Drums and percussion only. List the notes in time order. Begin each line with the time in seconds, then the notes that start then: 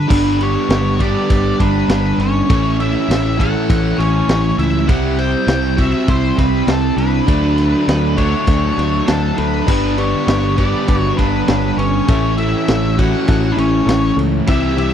0.10 kick, crash
0.41 ride
0.70 snare, ride
1.00 kick, ride
1.30 kick, ride
1.60 kick, ride
1.89 snare, ride
2.20 ride
2.50 kick, ride
2.80 ride
3.11 snare, ride
3.40 kick, ride
3.70 kick, ride
4.00 snare, ride
4.29 snare, ride
4.59 ride
4.89 kick, ride
5.18 ride
5.48 snare, ride
5.64 snare
5.78 kick, ride
6.08 kick, ride
6.38 kick, snare, ride
6.68 snare, ride
6.98 ride
7.28 kick, ride
7.58 ride
7.88 snare, ride
8.18 kick, ride
8.47 kick, ride
8.79 snare, ride
9.08 snare, ride
9.38 ride
9.68 kick, crash
9.98 ride
10.28 snare, ride
10.43 snare
10.58 kick, ride
10.88 kick, ride
11.18 kick, snare, ride
11.48 snare, ride
11.79 ride
12.08 kick, ride
12.38 ride
12.68 snare, ride
12.84 snare
12.99 kick, ride
13.28 kick, ride
13.58 ride
13.89 snare, ride
14.19 ride
14.47 kick, ride
14.78 ride